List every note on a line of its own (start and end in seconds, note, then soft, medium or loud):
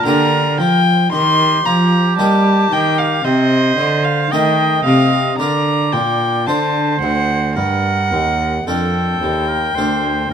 0.00 0.81 A#4 medium
0.05 0.60 D3 medium
0.05 0.55 D3 medium
0.05 0.44 A#3 medium
0.05 0.44 D4 medium
0.05 0.83 G4 medium
0.05 0.58 A#5 loud
0.58 1.11 F3 medium
0.58 1.09 F3 medium
0.58 1.11 G5 loud
1.12 1.64 D#3 medium
1.12 1.62 D#3 medium
1.12 3.21 G4 medium
1.12 1.67 C6 loud
1.65 2.17 F3 medium
1.65 2.15 F3 medium
1.65 2.17 A#5 medium
2.18 2.70 G3 medium
2.18 2.68 G3 medium
2.18 2.95 A#3 soft
2.18 2.95 D#4 soft
2.18 2.96 G4 medium
2.18 2.73 A5 medium
2.71 3.24 D#3 medium
2.71 3.21 D#3 medium
2.71 3.00 G5 loud
2.98 3.26 F5 medium
3.24 3.77 C3 medium
3.24 3.74 C3 medium
3.24 4.33 C5 medium
3.24 4.06 D#5 loud
3.77 4.30 D3 medium
3.77 4.28 D3 medium
4.04 4.33 F5 medium
4.31 4.84 D#3 medium
4.31 4.82 D#3 medium
4.31 5.09 A3 soft
4.31 5.10 D#4 soft
4.31 5.10 A4 soft
4.31 5.38 D#5 medium
4.31 4.84 G5 medium
4.84 5.38 C3 medium
4.84 5.35 C3 medium
4.84 5.37 F5 loud
5.38 5.95 D3 medium
5.38 5.89 D3 medium
5.38 6.44 D4 soft
5.38 6.44 A#4 soft
5.38 6.45 D5 medium
5.38 5.94 A#5 medium
5.92 6.49 A#2 medium
5.92 6.43 A#2 medium
5.92 6.48 G5 medium
6.46 7.01 D3 medium
6.46 6.98 D3 medium
6.46 7.53 D4 soft
6.46 7.54 C5 medium
6.46 7.53 C5 soft
6.46 7.00 A5 medium
7.01 7.58 D2 medium
7.01 7.53 D2 soft
7.01 7.55 F#5 medium
7.55 8.13 G2 medium
7.55 8.08 G2 medium
7.55 8.54 A#4 medium
7.55 8.68 F#5 loud
8.11 8.65 D#2 medium
8.11 8.63 D#2 medium
8.66 9.20 F2 medium
8.66 9.18 F2 soft
8.66 9.47 D4 soft
8.66 9.50 A4 medium
8.66 9.47 A#4 soft
8.66 10.33 G5 medium
9.21 9.75 D#2 medium
9.21 9.74 D#2 soft
9.48 9.77 A#4 medium
9.75 10.30 D2 medium
9.75 10.28 D2 soft
9.75 10.33 D4 soft
9.75 10.33 A#4 soft
9.75 10.31 C5 medium